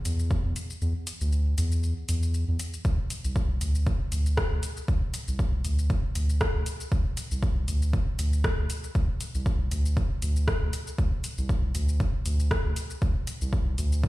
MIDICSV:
0, 0, Header, 1, 3, 480
1, 0, Start_track
1, 0, Tempo, 508475
1, 770, Time_signature, 4, 2, 24, 8
1, 13293, End_track
2, 0, Start_track
2, 0, Title_t, "Sub bass"
2, 0, Program_c, 0, 38
2, 50, Note_on_c, 0, 40, 99
2, 389, Note_off_c, 0, 40, 0
2, 423, Note_on_c, 0, 40, 99
2, 513, Note_off_c, 0, 40, 0
2, 770, Note_on_c, 0, 40, 98
2, 882, Note_off_c, 0, 40, 0
2, 1142, Note_on_c, 0, 38, 92
2, 1462, Note_off_c, 0, 38, 0
2, 1490, Note_on_c, 0, 40, 99
2, 1829, Note_off_c, 0, 40, 0
2, 1970, Note_on_c, 0, 40, 100
2, 2309, Note_off_c, 0, 40, 0
2, 2343, Note_on_c, 0, 40, 96
2, 2433, Note_off_c, 0, 40, 0
2, 2689, Note_on_c, 0, 38, 92
2, 2802, Note_off_c, 0, 38, 0
2, 3063, Note_on_c, 0, 36, 97
2, 3383, Note_off_c, 0, 36, 0
2, 3410, Note_on_c, 0, 38, 96
2, 3749, Note_off_c, 0, 38, 0
2, 3890, Note_on_c, 0, 38, 93
2, 4229, Note_off_c, 0, 38, 0
2, 4263, Note_on_c, 0, 38, 99
2, 4353, Note_off_c, 0, 38, 0
2, 4610, Note_on_c, 0, 38, 95
2, 4722, Note_off_c, 0, 38, 0
2, 4983, Note_on_c, 0, 36, 92
2, 5303, Note_off_c, 0, 36, 0
2, 5330, Note_on_c, 0, 38, 97
2, 5669, Note_off_c, 0, 38, 0
2, 5810, Note_on_c, 0, 38, 94
2, 6149, Note_off_c, 0, 38, 0
2, 6183, Note_on_c, 0, 38, 96
2, 6273, Note_off_c, 0, 38, 0
2, 6530, Note_on_c, 0, 38, 93
2, 6642, Note_off_c, 0, 38, 0
2, 6903, Note_on_c, 0, 36, 94
2, 7223, Note_off_c, 0, 36, 0
2, 7250, Note_on_c, 0, 38, 99
2, 7589, Note_off_c, 0, 38, 0
2, 7729, Note_on_c, 0, 38, 97
2, 8069, Note_off_c, 0, 38, 0
2, 8103, Note_on_c, 0, 38, 100
2, 8193, Note_off_c, 0, 38, 0
2, 8450, Note_on_c, 0, 38, 94
2, 8562, Note_off_c, 0, 38, 0
2, 8823, Note_on_c, 0, 36, 90
2, 9143, Note_off_c, 0, 36, 0
2, 9170, Note_on_c, 0, 38, 94
2, 9509, Note_off_c, 0, 38, 0
2, 9651, Note_on_c, 0, 38, 95
2, 9989, Note_off_c, 0, 38, 0
2, 10023, Note_on_c, 0, 38, 97
2, 10113, Note_off_c, 0, 38, 0
2, 10369, Note_on_c, 0, 38, 93
2, 10482, Note_off_c, 0, 38, 0
2, 10743, Note_on_c, 0, 36, 96
2, 11063, Note_off_c, 0, 36, 0
2, 11090, Note_on_c, 0, 38, 94
2, 11429, Note_off_c, 0, 38, 0
2, 11570, Note_on_c, 0, 38, 96
2, 11909, Note_off_c, 0, 38, 0
2, 11943, Note_on_c, 0, 38, 99
2, 12033, Note_off_c, 0, 38, 0
2, 12290, Note_on_c, 0, 38, 95
2, 12402, Note_off_c, 0, 38, 0
2, 12663, Note_on_c, 0, 36, 93
2, 12983, Note_off_c, 0, 36, 0
2, 13011, Note_on_c, 0, 38, 98
2, 13293, Note_off_c, 0, 38, 0
2, 13293, End_track
3, 0, Start_track
3, 0, Title_t, "Drums"
3, 49, Note_on_c, 9, 42, 76
3, 49, Note_on_c, 9, 82, 67
3, 144, Note_off_c, 9, 42, 0
3, 144, Note_off_c, 9, 82, 0
3, 182, Note_on_c, 9, 82, 37
3, 277, Note_off_c, 9, 82, 0
3, 289, Note_on_c, 9, 82, 28
3, 290, Note_on_c, 9, 36, 97
3, 383, Note_off_c, 9, 82, 0
3, 384, Note_off_c, 9, 36, 0
3, 529, Note_on_c, 9, 42, 61
3, 529, Note_on_c, 9, 82, 63
3, 623, Note_off_c, 9, 42, 0
3, 623, Note_off_c, 9, 82, 0
3, 662, Note_on_c, 9, 82, 37
3, 757, Note_off_c, 9, 82, 0
3, 770, Note_on_c, 9, 82, 30
3, 864, Note_off_c, 9, 82, 0
3, 1009, Note_on_c, 9, 42, 79
3, 1009, Note_on_c, 9, 82, 66
3, 1104, Note_off_c, 9, 42, 0
3, 1104, Note_off_c, 9, 82, 0
3, 1143, Note_on_c, 9, 82, 41
3, 1237, Note_off_c, 9, 82, 0
3, 1250, Note_on_c, 9, 82, 29
3, 1344, Note_off_c, 9, 82, 0
3, 1490, Note_on_c, 9, 42, 64
3, 1490, Note_on_c, 9, 82, 68
3, 1585, Note_off_c, 9, 42, 0
3, 1585, Note_off_c, 9, 82, 0
3, 1623, Note_on_c, 9, 82, 37
3, 1717, Note_off_c, 9, 82, 0
3, 1730, Note_on_c, 9, 82, 30
3, 1824, Note_off_c, 9, 82, 0
3, 1970, Note_on_c, 9, 42, 78
3, 1970, Note_on_c, 9, 82, 69
3, 2064, Note_off_c, 9, 42, 0
3, 2064, Note_off_c, 9, 82, 0
3, 2103, Note_on_c, 9, 82, 38
3, 2197, Note_off_c, 9, 82, 0
3, 2210, Note_on_c, 9, 82, 30
3, 2304, Note_off_c, 9, 82, 0
3, 2449, Note_on_c, 9, 42, 65
3, 2449, Note_on_c, 9, 82, 69
3, 2544, Note_off_c, 9, 42, 0
3, 2544, Note_off_c, 9, 82, 0
3, 2583, Note_on_c, 9, 82, 37
3, 2677, Note_off_c, 9, 82, 0
3, 2689, Note_on_c, 9, 36, 112
3, 2690, Note_on_c, 9, 82, 32
3, 2784, Note_off_c, 9, 36, 0
3, 2784, Note_off_c, 9, 82, 0
3, 2930, Note_on_c, 9, 42, 78
3, 2930, Note_on_c, 9, 82, 71
3, 3024, Note_off_c, 9, 42, 0
3, 3024, Note_off_c, 9, 82, 0
3, 3062, Note_on_c, 9, 82, 40
3, 3157, Note_off_c, 9, 82, 0
3, 3169, Note_on_c, 9, 36, 100
3, 3169, Note_on_c, 9, 82, 30
3, 3264, Note_off_c, 9, 36, 0
3, 3264, Note_off_c, 9, 82, 0
3, 3409, Note_on_c, 9, 42, 67
3, 3409, Note_on_c, 9, 82, 66
3, 3503, Note_off_c, 9, 42, 0
3, 3503, Note_off_c, 9, 82, 0
3, 3542, Note_on_c, 9, 82, 39
3, 3636, Note_off_c, 9, 82, 0
3, 3649, Note_on_c, 9, 82, 30
3, 3650, Note_on_c, 9, 36, 118
3, 3743, Note_off_c, 9, 82, 0
3, 3744, Note_off_c, 9, 36, 0
3, 3889, Note_on_c, 9, 42, 79
3, 3889, Note_on_c, 9, 82, 73
3, 3983, Note_off_c, 9, 42, 0
3, 3983, Note_off_c, 9, 82, 0
3, 4022, Note_on_c, 9, 82, 42
3, 4117, Note_off_c, 9, 82, 0
3, 4130, Note_on_c, 9, 36, 101
3, 4130, Note_on_c, 9, 37, 96
3, 4130, Note_on_c, 9, 82, 30
3, 4224, Note_off_c, 9, 36, 0
3, 4224, Note_off_c, 9, 37, 0
3, 4224, Note_off_c, 9, 82, 0
3, 4369, Note_on_c, 9, 42, 68
3, 4369, Note_on_c, 9, 82, 68
3, 4464, Note_off_c, 9, 42, 0
3, 4464, Note_off_c, 9, 82, 0
3, 4503, Note_on_c, 9, 82, 41
3, 4597, Note_off_c, 9, 82, 0
3, 4610, Note_on_c, 9, 36, 122
3, 4610, Note_on_c, 9, 82, 32
3, 4704, Note_off_c, 9, 36, 0
3, 4704, Note_off_c, 9, 82, 0
3, 4849, Note_on_c, 9, 42, 83
3, 4849, Note_on_c, 9, 82, 69
3, 4944, Note_off_c, 9, 42, 0
3, 4944, Note_off_c, 9, 82, 0
3, 4983, Note_on_c, 9, 82, 42
3, 5077, Note_off_c, 9, 82, 0
3, 5090, Note_on_c, 9, 36, 99
3, 5090, Note_on_c, 9, 82, 30
3, 5184, Note_off_c, 9, 36, 0
3, 5185, Note_off_c, 9, 82, 0
3, 5329, Note_on_c, 9, 42, 69
3, 5329, Note_on_c, 9, 82, 67
3, 5424, Note_off_c, 9, 42, 0
3, 5424, Note_off_c, 9, 82, 0
3, 5463, Note_on_c, 9, 82, 42
3, 5557, Note_off_c, 9, 82, 0
3, 5569, Note_on_c, 9, 82, 30
3, 5570, Note_on_c, 9, 36, 120
3, 5664, Note_off_c, 9, 36, 0
3, 5664, Note_off_c, 9, 82, 0
3, 5809, Note_on_c, 9, 42, 87
3, 5809, Note_on_c, 9, 82, 73
3, 5904, Note_off_c, 9, 42, 0
3, 5904, Note_off_c, 9, 82, 0
3, 5942, Note_on_c, 9, 82, 41
3, 6037, Note_off_c, 9, 82, 0
3, 6050, Note_on_c, 9, 36, 103
3, 6050, Note_on_c, 9, 37, 96
3, 6050, Note_on_c, 9, 82, 30
3, 6144, Note_off_c, 9, 36, 0
3, 6144, Note_off_c, 9, 37, 0
3, 6144, Note_off_c, 9, 82, 0
3, 6290, Note_on_c, 9, 42, 68
3, 6290, Note_on_c, 9, 82, 69
3, 6384, Note_off_c, 9, 42, 0
3, 6384, Note_off_c, 9, 82, 0
3, 6422, Note_on_c, 9, 82, 42
3, 6517, Note_off_c, 9, 82, 0
3, 6529, Note_on_c, 9, 82, 32
3, 6530, Note_on_c, 9, 36, 120
3, 6624, Note_off_c, 9, 36, 0
3, 6624, Note_off_c, 9, 82, 0
3, 6770, Note_on_c, 9, 42, 84
3, 6770, Note_on_c, 9, 82, 66
3, 6864, Note_off_c, 9, 42, 0
3, 6864, Note_off_c, 9, 82, 0
3, 6903, Note_on_c, 9, 82, 41
3, 6998, Note_off_c, 9, 82, 0
3, 7010, Note_on_c, 9, 36, 106
3, 7011, Note_on_c, 9, 82, 31
3, 7104, Note_off_c, 9, 36, 0
3, 7105, Note_off_c, 9, 82, 0
3, 7250, Note_on_c, 9, 42, 75
3, 7250, Note_on_c, 9, 82, 67
3, 7345, Note_off_c, 9, 42, 0
3, 7345, Note_off_c, 9, 82, 0
3, 7384, Note_on_c, 9, 82, 39
3, 7478, Note_off_c, 9, 82, 0
3, 7490, Note_on_c, 9, 36, 127
3, 7490, Note_on_c, 9, 82, 29
3, 7584, Note_off_c, 9, 36, 0
3, 7585, Note_off_c, 9, 82, 0
3, 7730, Note_on_c, 9, 42, 89
3, 7730, Note_on_c, 9, 82, 71
3, 7824, Note_off_c, 9, 42, 0
3, 7824, Note_off_c, 9, 82, 0
3, 7864, Note_on_c, 9, 82, 41
3, 7958, Note_off_c, 9, 82, 0
3, 7970, Note_on_c, 9, 36, 107
3, 7971, Note_on_c, 9, 37, 88
3, 7971, Note_on_c, 9, 82, 30
3, 8064, Note_off_c, 9, 36, 0
3, 8065, Note_off_c, 9, 37, 0
3, 8065, Note_off_c, 9, 82, 0
3, 8211, Note_on_c, 9, 42, 70
3, 8211, Note_on_c, 9, 82, 67
3, 8305, Note_off_c, 9, 42, 0
3, 8305, Note_off_c, 9, 82, 0
3, 8343, Note_on_c, 9, 82, 40
3, 8437, Note_off_c, 9, 82, 0
3, 8450, Note_on_c, 9, 36, 119
3, 8450, Note_on_c, 9, 82, 30
3, 8544, Note_off_c, 9, 36, 0
3, 8544, Note_off_c, 9, 82, 0
3, 8690, Note_on_c, 9, 42, 78
3, 8690, Note_on_c, 9, 82, 65
3, 8784, Note_off_c, 9, 42, 0
3, 8784, Note_off_c, 9, 82, 0
3, 8823, Note_on_c, 9, 82, 37
3, 8917, Note_off_c, 9, 82, 0
3, 8930, Note_on_c, 9, 36, 106
3, 8930, Note_on_c, 9, 82, 29
3, 9024, Note_off_c, 9, 36, 0
3, 9025, Note_off_c, 9, 82, 0
3, 9170, Note_on_c, 9, 42, 67
3, 9170, Note_on_c, 9, 82, 64
3, 9265, Note_off_c, 9, 42, 0
3, 9265, Note_off_c, 9, 82, 0
3, 9303, Note_on_c, 9, 82, 38
3, 9398, Note_off_c, 9, 82, 0
3, 9410, Note_on_c, 9, 36, 117
3, 9411, Note_on_c, 9, 82, 28
3, 9504, Note_off_c, 9, 36, 0
3, 9505, Note_off_c, 9, 82, 0
3, 9651, Note_on_c, 9, 42, 84
3, 9651, Note_on_c, 9, 82, 67
3, 9745, Note_off_c, 9, 42, 0
3, 9745, Note_off_c, 9, 82, 0
3, 9784, Note_on_c, 9, 82, 40
3, 9878, Note_off_c, 9, 82, 0
3, 9890, Note_on_c, 9, 36, 107
3, 9891, Note_on_c, 9, 37, 90
3, 9891, Note_on_c, 9, 82, 29
3, 9984, Note_off_c, 9, 36, 0
3, 9985, Note_off_c, 9, 37, 0
3, 9985, Note_off_c, 9, 82, 0
3, 10131, Note_on_c, 9, 42, 70
3, 10131, Note_on_c, 9, 82, 65
3, 10225, Note_off_c, 9, 42, 0
3, 10225, Note_off_c, 9, 82, 0
3, 10263, Note_on_c, 9, 82, 37
3, 10357, Note_off_c, 9, 82, 0
3, 10370, Note_on_c, 9, 36, 113
3, 10370, Note_on_c, 9, 82, 30
3, 10464, Note_off_c, 9, 36, 0
3, 10464, Note_off_c, 9, 82, 0
3, 10610, Note_on_c, 9, 42, 78
3, 10610, Note_on_c, 9, 82, 63
3, 10704, Note_off_c, 9, 42, 0
3, 10704, Note_off_c, 9, 82, 0
3, 10743, Note_on_c, 9, 82, 36
3, 10837, Note_off_c, 9, 82, 0
3, 10850, Note_on_c, 9, 36, 104
3, 10850, Note_on_c, 9, 82, 28
3, 10944, Note_off_c, 9, 36, 0
3, 10944, Note_off_c, 9, 82, 0
3, 11089, Note_on_c, 9, 42, 69
3, 11089, Note_on_c, 9, 82, 64
3, 11184, Note_off_c, 9, 42, 0
3, 11184, Note_off_c, 9, 82, 0
3, 11222, Note_on_c, 9, 82, 37
3, 11317, Note_off_c, 9, 82, 0
3, 11329, Note_on_c, 9, 36, 126
3, 11330, Note_on_c, 9, 82, 28
3, 11424, Note_off_c, 9, 36, 0
3, 11424, Note_off_c, 9, 82, 0
3, 11570, Note_on_c, 9, 42, 81
3, 11570, Note_on_c, 9, 82, 64
3, 11664, Note_off_c, 9, 42, 0
3, 11664, Note_off_c, 9, 82, 0
3, 11703, Note_on_c, 9, 82, 39
3, 11797, Note_off_c, 9, 82, 0
3, 11809, Note_on_c, 9, 36, 105
3, 11810, Note_on_c, 9, 37, 87
3, 11810, Note_on_c, 9, 82, 28
3, 11904, Note_off_c, 9, 36, 0
3, 11905, Note_off_c, 9, 37, 0
3, 11905, Note_off_c, 9, 82, 0
3, 12049, Note_on_c, 9, 42, 69
3, 12049, Note_on_c, 9, 82, 66
3, 12144, Note_off_c, 9, 42, 0
3, 12144, Note_off_c, 9, 82, 0
3, 12182, Note_on_c, 9, 82, 36
3, 12277, Note_off_c, 9, 82, 0
3, 12289, Note_on_c, 9, 36, 114
3, 12289, Note_on_c, 9, 82, 30
3, 12384, Note_off_c, 9, 36, 0
3, 12384, Note_off_c, 9, 82, 0
3, 12530, Note_on_c, 9, 42, 78
3, 12530, Note_on_c, 9, 82, 65
3, 12624, Note_off_c, 9, 42, 0
3, 12624, Note_off_c, 9, 82, 0
3, 12663, Note_on_c, 9, 82, 38
3, 12757, Note_off_c, 9, 82, 0
3, 12769, Note_on_c, 9, 36, 93
3, 12769, Note_on_c, 9, 82, 28
3, 12864, Note_off_c, 9, 36, 0
3, 12864, Note_off_c, 9, 82, 0
3, 13010, Note_on_c, 9, 42, 65
3, 13010, Note_on_c, 9, 82, 62
3, 13104, Note_off_c, 9, 42, 0
3, 13104, Note_off_c, 9, 82, 0
3, 13143, Note_on_c, 9, 82, 35
3, 13237, Note_off_c, 9, 82, 0
3, 13250, Note_on_c, 9, 36, 117
3, 13250, Note_on_c, 9, 82, 28
3, 13293, Note_off_c, 9, 36, 0
3, 13293, Note_off_c, 9, 82, 0
3, 13293, End_track
0, 0, End_of_file